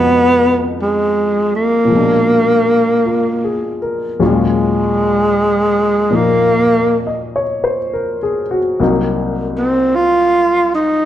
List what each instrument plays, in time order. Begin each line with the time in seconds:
Already playing: grand piano F2 B2 F3 G#3 D#4, tenor saxophone B3
0.82 tenor saxophone G#3
1.55 tenor saxophone A#3
1.85 grand piano A#2 F3
1.91 grand piano B2 G#3
1.96 grand piano D4
3.06 grand piano F4
3.44 grand piano G#4
3.82 grand piano A#4
4.19 grand piano D#2 A#2 F#3 G#3 C#4 F4
4.24 tenor saxophone G#3
6.10 grand piano A#2 F3 A#3 D#4
6.15 tenor saxophone A#3
7.07 grand piano D#5
7.36 grand piano C#5
7.64 grand piano C5
7.93 grand piano A#4
8.23 grand piano G#4
8.51 grand piano F#4
8.80 grand piano C2 C3 F#3 A#3 D#4
9.58 tenor saxophone C4
9.96 tenor saxophone F4
10.75 tenor saxophone D#4